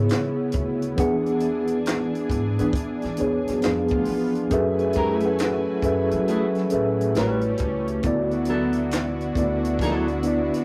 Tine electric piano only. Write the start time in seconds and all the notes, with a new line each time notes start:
Already playing: C#3 B3 E4 G#4 C#5
0.96 E3 B3 D4 G#4 F#5
3.17 E3 B3 D4 G#4 C#5
3.61 F3 B3 D4 G#4 F5
4.49 F#3 C#4 G#4 A4 B4 E5
5.22 F#3 C#4 G#4 A4 B4 F#5
5.82 F#3 C#4 G#4 A4 B4 E5
6.70 F#3 C#4 G#4 A4 B4 E5
7.14 A3 E4 F#4 G4 B4 C#5
8.03 D3 B3 E4 F#4 D5
9.35 D3 B3 E4 F#4 D5
10.23 B3 D4 E4 F#4 D5